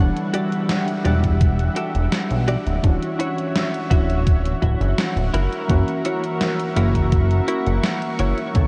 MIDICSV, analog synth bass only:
0, 0, Header, 1, 2, 480
1, 0, Start_track
1, 0, Tempo, 714286
1, 1907, Time_signature, 4, 2, 24, 8
1, 5829, End_track
2, 0, Start_track
2, 0, Title_t, "Analog synth bass"
2, 0, Program_c, 0, 38
2, 0, Note_on_c, 0, 28, 97
2, 78, Note_off_c, 0, 28, 0
2, 707, Note_on_c, 0, 28, 76
2, 1138, Note_off_c, 0, 28, 0
2, 1311, Note_on_c, 0, 28, 98
2, 1396, Note_off_c, 0, 28, 0
2, 1552, Note_on_c, 0, 35, 92
2, 1725, Note_off_c, 0, 35, 0
2, 1793, Note_on_c, 0, 26, 97
2, 1877, Note_off_c, 0, 26, 0
2, 1908, Note_on_c, 0, 26, 95
2, 1999, Note_off_c, 0, 26, 0
2, 2627, Note_on_c, 0, 26, 76
2, 3058, Note_off_c, 0, 26, 0
2, 3108, Note_on_c, 0, 26, 95
2, 3199, Note_off_c, 0, 26, 0
2, 3231, Note_on_c, 0, 30, 100
2, 3316, Note_off_c, 0, 30, 0
2, 3471, Note_on_c, 0, 26, 100
2, 3556, Note_off_c, 0, 26, 0
2, 3586, Note_on_c, 0, 30, 101
2, 3678, Note_off_c, 0, 30, 0
2, 3828, Note_on_c, 0, 30, 98
2, 3919, Note_off_c, 0, 30, 0
2, 4548, Note_on_c, 0, 30, 77
2, 4979, Note_off_c, 0, 30, 0
2, 5153, Note_on_c, 0, 30, 101
2, 5237, Note_off_c, 0, 30, 0
2, 5509, Note_on_c, 0, 30, 101
2, 5599, Note_off_c, 0, 30, 0
2, 5748, Note_on_c, 0, 35, 96
2, 5829, Note_off_c, 0, 35, 0
2, 5829, End_track
0, 0, End_of_file